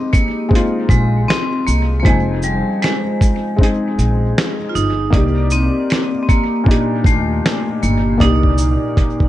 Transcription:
0.00 0.49 G#3 medium
0.00 0.15 C4 loud
0.00 0.51 C4 medium
0.00 0.53 D#4 medium
0.00 5.14 G4 medium
0.13 0.92 A#3 loud
0.13 kick medium
0.13 closed hi-hat soft
0.13 shaker soft
0.49 1.46 G#3 medium
0.49 1.47 C4 medium
0.49 kick medium
0.53 1.48 D#4 medium
0.53 1.49 F4 medium
0.53 closed hi-hat medium
0.89 1.23 A#1 medium
0.89 1.25 G#3 medium
0.89 kick medium
0.89 closed hi-hat soft
0.89 shaker soft
1.28 1.68 C4 medium
1.28 snare loud
1.28 closed hi-hat medium
1.67 2.01 C2 medium
1.67 1.81 A#3 medium
1.67 shaker soft
1.99 3.00 F3 medium
1.99 2.05 A#3 medium
2.05 2.59 F1 loud
2.05 2.22 G#3 medium
2.05 3.01 C4 medium
2.05 3.02 D#4 medium
2.05 kick loud
2.05 closed hi-hat medium
2.09 3.03 G#5 medium
2.42 2.83 G3 medium
2.42 shaker soft
2.82 4.65 G#3 medium
2.82 snare loud
2.82 closed hi-hat medium
3.21 kick medium
3.21 closed hi-hat soft
3.21 shaker soft
3.56 4.54 G#3 medium
3.56 4.55 C4 medium
3.56 kick medium
3.61 4.56 D#4 medium
3.61 4.57 G#4 medium
3.61 closed hi-hat medium
3.99 4.32 A#1 medium
3.99 closed hi-hat soft
3.99 shaker soft
4.38 snare loud
4.38 closed hi-hat medium
4.69 4.75 F4 medium
4.75 5.09 G1 medium
4.75 5.54 D#4 loud
4.75 shaker soft
5.10 5.67 C2 loud
5.10 6.08 A#3 medium
5.10 6.09 D5 medium
5.10 kick loud
5.10 closed hi-hat medium
5.15 6.10 D#4 medium
5.15 6.11 G4 medium
5.50 6.22 C4 loud
5.50 shaker soft
5.90 snare loud
5.90 closed hi-hat medium
6.23 6.28 C4 medium
6.29 7.01 A#3 medium
6.29 kick medium
6.29 closed hi-hat soft
6.29 shaker soft
6.64 7.61 A#2 medium
6.64 7.62 D4 medium
6.64 kick medium
6.68 7.63 D#4 medium
6.68 7.65 G4 medium
6.68 closed hi-hat medium
7.04 7.39 D#2 medium
7.04 7.85 A3 medium
7.04 kick medium
7.04 closed hi-hat soft
7.04 shaker soft
7.46 snare loud
7.46 closed hi-hat medium
7.83 8.16 G1 medium
7.83 8.22 A#3 medium
7.83 shaker soft
8.18 8.75 C2 loud
8.18 9.15 A#3 medium
8.18 9.29 D#4 medium
8.18 9.16 D5 medium
8.18 kick medium
8.18 closed hi-hat medium
8.22 9.17 D#4 medium
8.22 9.18 G4 medium
8.43 kick soft
8.58 shaker soft
8.97 kick medium
8.97 closed hi-hat medium
9.20 kick medium

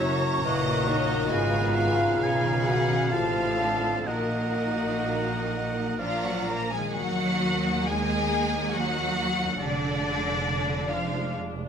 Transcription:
0.00 0.42 F#1 medium
0.00 0.42 F#2 medium
0.00 1.35 F#2 medium
0.00 0.22 C#3 medium
0.00 1.35 F#3 medium
0.00 0.44 F#3 medium
0.00 0.42 A#3 medium
0.00 0.45 C#4 medium
0.00 0.44 E4 medium
0.00 1.35 E4 medium
0.00 0.44 F#4 medium
0.00 0.64 A#4 medium
0.00 0.43 C#5 medium
0.00 1.02 C#5 medium
0.00 0.18 E5 medium
0.00 0.45 E5 medium
0.00 1.28 A#5 medium
0.00 1.04 C#6 medium
0.23 1.35 C#3 medium
0.44 1.30 A#1 medium
0.44 1.30 A#2 medium
0.44 0.89 E3 medium
0.44 0.85 A#3 medium
0.44 1.32 A#3 medium
0.44 2.18 F#4 medium
0.44 0.88 D#5 medium
0.44 2.25 F#5 medium
0.65 1.08 A#4 medium
0.86 1.33 D#3 medium
0.86 1.34 A#3 medium
0.86 1.29 D#4 medium
0.86 1.32 C#5 medium
0.86 1.28 D#5 medium
1.09 1.35 A#4 medium
1.29 2.21 G#1 medium
1.29 3.16 G#2 medium
1.29 2.21 G#2 medium
1.29 3.12 C#3 medium
1.29 2.19 B3 medium
1.29 2.66 F4 loud
1.29 2.18 B4 medium
1.29 1.77 D#5 medium
1.29 2.66 F5 medium
1.29 1.72 G#5 medium
1.29 3.12 A#5 medium
1.55 1.97 D#3 medium
1.74 3.56 D#4 medium
1.74 4.06 F5 medium
1.74 2.18 G#5 medium
1.99 2.42 D#3 medium
2.19 3.11 B1 medium
2.19 3.10 B2 medium
2.19 2.60 C#3 soft
2.19 3.13 C#4 medium
2.19 3.13 G#4 medium
2.19 3.10 B4 medium
2.19 3.09 G#5 medium
2.24 2.66 G#5 medium
2.43 2.87 D#3 soft
2.65 3.15 B3 medium
2.65 3.13 F#4 medium
2.65 3.12 F#5 medium
2.65 3.14 G#5 medium
2.88 3.16 D#3 medium
3.11 4.07 A1 medium
3.11 4.10 A2 medium
3.11 4.07 A2 medium
3.11 3.60 C3 medium
3.11 3.57 C4 medium
3.11 4.07 F4 medium
3.11 4.05 A4 medium
3.11 4.07 C5 medium
3.11 4.05 F5 medium
3.11 4.07 F5 medium
3.11 4.09 A5 medium
3.11 4.07 A5 medium
3.35 3.81 A3 soft
3.57 4.08 D3 medium
3.57 4.06 C4 medium
3.57 4.54 D#4 medium
3.82 4.11 A3 soft
4.05 5.96 A#1 medium
4.05 5.95 A#2 medium
4.05 6.00 A#2 medium
4.05 6.01 D#3 medium
4.05 5.96 A#3 medium
4.05 6.00 D#4 medium
4.05 5.99 F#4 medium
4.05 5.96 A#4 medium
4.05 6.01 D#5 medium
4.05 5.96 F#5 medium
4.05 6.00 F#5 medium
4.05 5.95 A#5 medium
4.31 4.78 F#3 soft
4.56 6.04 D#4 soft
4.79 5.27 F#3 soft
5.05 5.45 F3 soft
5.28 5.75 F#3 soft
5.52 6.82 A#3 soft
5.76 6.04 F#3 soft
5.99 6.74 A#1 medium
5.99 6.73 A#2 medium
5.99 7.00 A#2 medium
5.99 6.23 F3 medium
5.99 6.62 F3 medium
5.99 6.23 F3 medium
5.99 6.75 D4 medium
5.99 6.23 F4 medium
5.99 6.75 F4 medium
5.99 6.62 D5 medium
5.99 6.76 D5 medium
5.99 6.62 F5 medium
5.99 6.23 F5 medium
5.99 6.61 A#5 soft
5.99 6.76 A#5 medium
6.24 6.72 F3 soft
6.24 6.48 F#3 medium
6.24 6.49 F#3 medium
6.24 6.49 F#4 medium
6.24 6.49 F#5 medium
6.48 6.73 A#3 medium
6.48 7.00 D4 soft
6.48 6.73 A#4 medium
6.48 6.72 A#5 medium
6.72 7.00 F3 soft
6.72 6.95 G#3 medium
6.72 6.96 G#3 medium
6.72 6.95 G#4 medium
6.72 6.96 G#5 medium
6.78 9.55 D#3 medium
6.83 9.58 A#3 medium
6.87 9.60 D#4 soft
6.92 7.84 F#3 medium
6.92 7.85 F#3 medium
6.92 9.57 D#4 medium
6.92 9.62 F#4 medium
6.92 7.85 F#4 medium
6.92 7.82 F#5 loud
6.96 9.57 D#2 medium
6.96 9.57 A#3 medium
7.84 8.73 G#3 medium
7.84 8.74 G#3 medium
7.84 8.74 G#4 medium
7.84 8.74 G#5 medium
8.72 9.60 F#3 medium
8.72 9.60 F#4 medium
8.72 9.61 F#5 loud
8.76 9.45 F#3 medium
9.43 11.69 F2 medium
9.47 11.69 G#3 medium
9.52 11.69 D4 medium
9.56 11.69 G#3 medium
9.56 11.69 D4 medium
9.56 11.69 F4 medium
9.60 11.69 F1 medium
9.60 10.89 D3 medium
9.60 10.90 D3 medium
9.60 10.89 D4 medium
9.60 10.92 D5 loud
10.91 11.35 F3 medium
10.91 11.34 F4 medium
10.91 11.36 F5 medium

